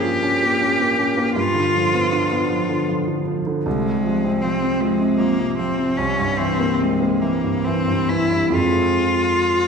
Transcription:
Already playing: G2 C#3 F3 A#3 C#4 G4
0.04 F4
0.23 C#4
0.43 A#3
0.62 C#4
0.80 A#3
0.99 C#4
1.17 A#3
1.36 G2 F4
1.55 D3
1.74 F3
1.93 B3
2.12 D4
2.31 B3
2.50 F3
2.69 D3
2.89 F3
3.08 D3
3.28 F3
3.47 D3
3.65 C2 G#3
3.85 C3
4.04 F3
4.25 C4
4.42 F3 C4
4.63 C4
4.81 F3 G#3
5.00 C3
5.19 F3 A#3
5.39 C3
5.58 F3 C4
5.79 C3
5.97 C2 C#4
6.19 G2
6.37 E3 C4
6.59 A#3
6.80 G#3 C4
7.01 A#3
7.22 E3 A#3
7.44 G2
7.65 E3 C4
7.88 G2
8.09 E3 E4
8.32 G2
8.50 F2 F3 G#3 C4
8.54 F4

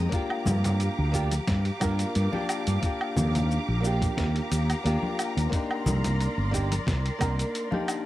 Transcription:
Already playing: G5 A#5
0.09 A#3 D4 G4 F5 D6, kick, closed hi-hat, cabasa
0.13 F4 G4
0.30 low woodblock
0.46 G2, high conga, low conga, cabasa
0.64 closed hi-hat, low conga, cabasa
0.80 closed hi-hat, cabasa
0.98 D2
1.12 A#3 D4 F4 G4, kick, closed hi-hat, cabasa
1.31 closed hi-hat, high conga, cabasa
1.48 G2, kick, snare, closed hi-hat, cabasa
1.65 closed hi-hat
1.80 G2 A#3 D4 F4 A#4, kick, closed hi-hat, cabasa, low woodblock
1.99 closed hi-hat, cabasa
2.15 G2, closed hi-hat, cabasa
2.32 A#3 D4 F4 G4, high conga
2.49 closed hi-hat, cabasa, low woodblock
2.67 G2, closed hi-hat, cabasa
2.80 A#3 D4 F4 G4 A#5, kick, closed hi-hat, cabasa
2.86 G4
3.01 low woodblock
3.16 D#2, high conga, low conga, cabasa
3.35 closed hi-hat, low conga, cabasa
3.51 cabasa
3.68 A#1
3.80 A#3 D4 F4
3.84 G4, cabasa
4.02 kick, closed hi-hat, high conga, cabasa
4.17 D#2, kick, snare, closed hi-hat, cabasa
4.36 closed hi-hat
4.51 D#2, closed hi-hat, cabasa
4.70 closed hi-hat, cabasa, low woodblock
4.84 D#2 A#3 D4 F4 G4, closed hi-hat, cabasa
5.03 high conga
5.19 closed hi-hat, cabasa, low woodblock
5.37 D#2, closed hi-hat, cabasa
5.49 A#3 D4 A#4 D5 C6, kick, closed hi-hat, cabasa
5.53 D#4 G4
5.71 low woodblock
5.86 C2, high conga, low conga, cabasa
6.04 closed hi-hat, low conga, cabasa
6.21 closed hi-hat, cabasa
6.37 G1
6.51 A#3 D4 D#4 G4, kick, closed hi-hat, cabasa
6.72 closed hi-hat, high conga, cabasa
6.87 C2, kick, snare, closed hi-hat, cabasa
7.06 closed hi-hat
7.19 C2 A#3 D4 D#4 A#4, kick, closed hi-hat, cabasa, low woodblock
7.39 closed hi-hat, cabasa
7.55 closed hi-hat, cabasa
7.71 A#3 D4 D#4 G4, high conga
7.88 closed hi-hat, cabasa, low woodblock

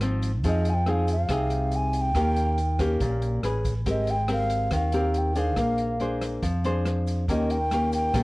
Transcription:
Already playing: G#1 G#2
0.01 F3 C4 D#4, cross-stick, closed hi-hat
0.22 closed hi-hat, shaker
0.44 F2 F3 C4 D#4 G#4, kick, closed hi-hat, shaker
0.48 D#5
0.65 closed hi-hat, shaker
0.70 G#5
0.74 G5
0.86 C4 D#4 G#4, cross-stick, closed hi-hat
0.90 F5
1.08 closed hi-hat, shaker
1.13 F5
1.29 C2 C3 C4 D#4 G#4, kick, cross-stick, closed hi-hat, shaker
1.50 closed hi-hat, shaker
1.72 closed hi-hat, shaker
1.76 G#5
1.93 G#5, closed hi-hat, shaker
2.01 G5
2.15 D#2 D#3 A#3 C#4 G4, kick, cross-stick, closed hi-hat, shaker
2.36 closed hi-hat, shaker
2.58 closed hi-hat, shaker
2.79 A#3 C#4 G4, kick, cross-stick, closed hi-hat, shaker
3.01 A#1 A#2, kick, closed hi-hat, shaker
3.22 closed hi-hat, shaker
3.43 A1 C#4 G#4 B4, cross-stick, closed hi-hat, shaker
3.65 kick, closed hi-hat, shaker
3.86 G#1 G#3 C4 G4 A#4, kick, closed hi-hat, shaker
3.90 D#5
4.07 G5, closed hi-hat, shaker
4.28 C4 G4 A#4, cross-stick, closed hi-hat
4.33 F5
4.50 closed hi-hat, shaker
4.71 D#2 D#3, kick, cross-stick, closed hi-hat, shaker
4.75 F5
4.92 C4 G4 A#4, closed hi-hat, shaker
5.14 closed hi-hat
5.18 G5
5.36 D4 G#4 C5 F5, closed hi-hat, shaker
5.57 A#1 A#3, kick, cross-stick, closed hi-hat, shaker
5.78 closed hi-hat, shaker
6.00 D4 G#4 C5, closed hi-hat
6.22 cross-stick, closed hi-hat, shaker
6.43 F2 F3, kick, closed hi-hat, shaker
6.64 D4 G#4 C5, closed hi-hat, shaker
6.86 cross-stick, closed hi-hat
7.07 closed hi-hat, shaker
7.28 D#2 D#3 A#3 C#4 G4 D#5, kick, closed hi-hat, shaker
7.50 G5, closed hi-hat, shaker
7.71 A#3 C#4 G4, cross-stick, closed hi-hat, shaker
7.92 G5, closed hi-hat, shaker
8.14 A#1 A#2 A#3 C#4 G4, kick, cross-stick, closed hi-hat, shaker

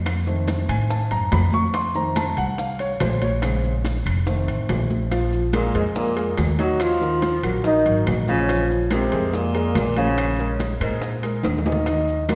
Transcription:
Already playing: F2
0.06 high bongo, high conga, high timbale, claves, maracas
0.27 D#3 A3 C4, high bongo, high conga, maracas
0.48 high bongo, high conga, high timbale, low timbale, maracas
0.68 A2 G#5, high timbale, claves, maracas
0.90 A5, high bongo, high conga, maracas
1.11 F#2 A#5, high bongo, high conga, high timbale, maracas
1.32 F2 B5, high bongo, low bongo, high conga, high timbale, low timbale, claves, maracas
1.53 C#6, high bongo, high conga, maracas
1.74 C6, high bongo, high conga, high timbale, maracas
1.95 D#3 A3 C4 A#5, high bongo, high conga, maracas
2.16 A5, high bongo, high conga, high timbale, low timbale, claves, maracas
2.37 C2 F#5, high timbale, maracas
2.58 F5, high bongo, high conga, maracas
2.79 C#5, high bongo, high conga, high timbale, maracas
3.00 A#1 C5, high bongo, low bongo, high conga, high timbale, low timbale, claves, maracas
3.22 C#5, high bongo, high conga, high timbale, maracas
3.42 C#3 G#3 C4, high bongo, high conga, high timbale, claves, maracas
3.63 high bongo, high conga, maracas
3.85 high bongo, high conga, high timbale, low timbale, maracas
4.06 F1, high timbale, claves, maracas
4.26 D#3 A3 C4, high bongo, high conga, maracas
4.48 A1, high bongo, high conga, high timbale, maracas
4.69 A#1, high bongo, low bongo, high conga, high timbale, low timbale, claves, maracas
4.90 high bongo, high conga, maracas
5.11 F3 F4 F5, high bongo, high conga, high timbale, maracas
5.32 high bongo, high conga, maracas
5.53 A#2 G#3 A#3 G#4 A#4, high bongo, high conga, high timbale, low timbale, claves, maracas
5.74 F2 G#2 G#3 G#4 A#4, high timbale, maracas
5.95 A#2 A#3, high bongo, high conga, maracas
6.16 G#3 G#4 A#4, high bongo, high conga, high timbale, maracas
6.38 D#2, high bongo, low bongo, high conga, high timbale, low timbale, claves, maracas
6.58 D#3 F#3 D#4 F#4 D#5, high bongo, high conga, high timbale, maracas
6.80 F3 F4, high bongo, high timbale, claves, maracas
7.01 D#3 F4 A#4, high bongo, high conga, maracas
7.22 high bongo, high conga, high timbale, low timbale, maracas
7.43 A#1 F#3 F#4 A#4, high timbale, claves, maracas
7.64 D#3 D#4, high bongo, high conga, maracas
7.85 G#1 F#3 F#4 A#4, high bongo, high conga, high timbale, maracas
8.06 A#1, high bongo, low bongo, high conga, high timbale, low timbale, claves, maracas
8.28 C#3 F3 C#4 F4 F5, high bongo, high conga, maracas
8.49 F3 F4 F5, high bongo, high conga, high timbale, maracas
8.70 high bongo, high conga, maracas
8.90 C3 G#3 C4 G#4 A#4, high bongo, high conga, high timbale, low timbale, claves, maracas
9.12 F2 G#3 G#4 A#4, high timbale, maracas
9.33 A#2 A#3, high bongo, high conga, maracas
9.54 G#3 G#4 A#4, high bongo, high conga, high timbale, maracas
9.75 A#1, high bongo, low bongo, high conga, high timbale, low timbale, claves, maracas
9.96 C#3 F3 C#4 F4 F5, high bongo, high conga, high timbale, maracas
10.18 high bongo, high timbale, claves, maracas
10.38 G#3 G#4 A#4, high bongo, high conga, maracas
10.60 high bongo, high conga, high timbale, low timbale, maracas
10.80 G#2 A#2 G#3 G#4 A#4, high timbale, claves, maracas
11.02 high bongo, high conga, maracas
11.23 G#3 G#4 A#4, high bongo, high conga, high timbale, maracas
11.43 D#2, high bongo, high conga, high timbale, claves, maracas
11.58 high bongo
11.66 D#3 D#4 D#5, high conga, low timbale, maracas
11.72 low bongo
11.86 D#3 D#4 D#5, high bongo, high conga, high timbale, maracas
12.08 high bongo, high conga, maracas
12.29 A#2 F#3 A#3 F#4 A#4, high bongo, high conga, high timbale, low timbale, claves, maracas

